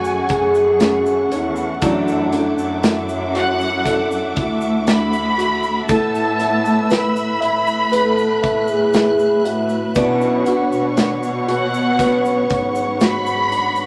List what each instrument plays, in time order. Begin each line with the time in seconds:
Already playing: cello section F#2, grand piano F#3 A3 C#4 C#5 F#5, steel-string acoustic guitar A3 C#4 F#4 G#4, string section A3 F#5 C#6, french horn section F#4, violin section G#5
0.04 shaker
0.29 cello section F#2, grand piano G#4, french horn section G#4, kick, closed hi-hat
0.55 shaker
0.80 grand piano C#4, snare, closed hi-hat, shaker
1.06 shaker
1.32 cello section E2, french horn section E4, grand piano C#5, closed hi-hat, shaker
1.56 shaker
1.82 steel-string acoustic guitar F#2 E3 A3 D4 E4 A4, cello section F#2, grand piano F#3, french horn section D4, string section E5 D6, kick, closed hi-hat, shaker
2.08 shaker
2.32 steel-string acoustic guitar A3 D4 E4 A4, grand piano D4, closed hi-hat, shaker
2.58 cello section F#2, shaker
2.83 grand piano E4, snare, closed hi-hat, shaker
3.09 shaker
3.35 grand piano F#4, violin section F#5, closed hi-hat
3.60 shaker
3.84 steel-string acoustic guitar A3 D4 E4, grand piano A4, kick, closed hi-hat, shaker
3.90 steel-string acoustic guitar A4
4.11 shaker
4.36 cello section D2, grand piano E4, kick, closed hi-hat
4.61 shaker
4.87 grand piano D4, violin section B5, snare, closed hi-hat, shaker
5.13 shaker
5.38 grand piano F#4, closed hi-hat, shaker
5.63 shaker
5.89 cello section A2, steel-string acoustic guitar A3 B3 E4 A4, grand piano A3, string section B4 E6, violin section A5, kick, closed hi-hat, shaker
6.15 shaker
6.39 steel-string acoustic guitar B3 E4 A4, grand piano E4, closed hi-hat, shaker
6.65 shaker
6.90 grand piano B4, violin section B5, snare, closed hi-hat, shaker
7.16 shaker
7.41 cello section A2, grand piano E5, closed hi-hat
7.67 shaker
7.91 steel-string acoustic guitar A3 B3, french horn section A4, grand piano B4, string section F#6, closed hi-hat, shaker
7.95 steel-string acoustic guitar E4
8.18 shaker
8.42 cello section A2, grand piano E5, kick, closed hi-hat
8.68 french horn section G#4, shaker
8.93 grand piano E4, snare, closed hi-hat, shaker
9.19 shaker
9.44 cello section A2, french horn section F#4, grand piano E5, closed hi-hat, shaker
9.69 shaker
9.95 steel-string acoustic guitar B2 F#3 C#4 D4 F#4, cello section B2, grand piano B3, french horn section E4, string section C#5 F#5 C#6, kick, closed hi-hat, shaker
10.21 shaker
10.45 french horn section D4, steel-string acoustic guitar D4 F#4, grand piano F#4, closed hi-hat, shaker
10.72 cello section B2, shaker
10.97 grand piano D4, snare, closed hi-hat, shaker
11.23 shaker
11.48 grand piano F#4, violin section F#5, closed hi-hat
11.74 shaker
11.97 steel-string acoustic guitar F#3 D4, grand piano B3, kick, closed hi-hat, shaker
12.01 steel-string acoustic guitar C#4 F#4
12.25 shaker
12.50 cello section G#2, grand piano C#5, kick, closed hi-hat
12.75 shaker
13.00 grand piano F#4, violin section B5, snare, closed hi-hat, shaker
13.26 shaker
13.52 grand piano D4, closed hi-hat, shaker
13.76 shaker